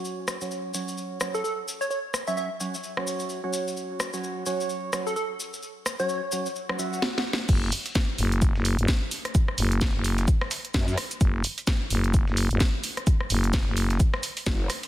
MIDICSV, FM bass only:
0, 0, Header, 1, 2, 480
1, 0, Start_track
1, 0, Tempo, 465116
1, 47, Time_signature, 4, 2, 24, 8
1, 15355, End_track
2, 0, Start_track
2, 0, Title_t, "FM bass"
2, 0, Program_c, 0, 39
2, 7728, Note_on_c, 0, 30, 96
2, 7952, Note_off_c, 0, 30, 0
2, 8447, Note_on_c, 0, 30, 99
2, 8806, Note_off_c, 0, 30, 0
2, 8828, Note_on_c, 0, 30, 97
2, 9046, Note_off_c, 0, 30, 0
2, 9068, Note_on_c, 0, 30, 98
2, 9151, Note_off_c, 0, 30, 0
2, 9887, Note_on_c, 0, 30, 98
2, 10246, Note_off_c, 0, 30, 0
2, 10268, Note_on_c, 0, 30, 99
2, 10592, Note_off_c, 0, 30, 0
2, 11567, Note_on_c, 0, 30, 96
2, 11791, Note_off_c, 0, 30, 0
2, 12287, Note_on_c, 0, 30, 99
2, 12646, Note_off_c, 0, 30, 0
2, 12668, Note_on_c, 0, 30, 98
2, 12885, Note_off_c, 0, 30, 0
2, 12908, Note_on_c, 0, 30, 98
2, 12991, Note_off_c, 0, 30, 0
2, 13727, Note_on_c, 0, 30, 99
2, 14086, Note_off_c, 0, 30, 0
2, 14108, Note_on_c, 0, 30, 101
2, 14431, Note_off_c, 0, 30, 0
2, 15355, End_track
0, 0, End_of_file